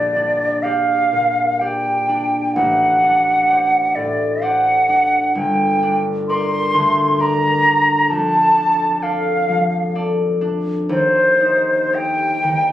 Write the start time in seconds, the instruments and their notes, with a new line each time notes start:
Already playing: harp A#1 G4 A#4, flute D5
0.16 harp D4
0.63 harp G4 D5, flute F5
1.12 harp A#2
1.59 harp G4 D5, flute G5
2.09 harp D4
2.54 harp A1, flute F#5
3.04 harp D4
3.50 harp C5 D5
3.95 harp A2, flute D5
4.42 harp C5 D5, flute F#5
4.89 harp D4
5.35 harp G1, flute G5
5.83 harp D4
6.29 harp A#4 D5, flute C6
6.74 harp D2
7.19 harp A#4 D5, flute A#5
7.65 harp D4
8.10 harp F2, flute A5
8.57 harp D4
9.02 harp A4 D5, flute F5
9.49 harp F3
9.95 harp A4 D5
10.41 harp D4
10.89 harp D#2, flute C5
11.41 harp D#4
11.93 harp G4 C5, flute G5
12.44 harp D#3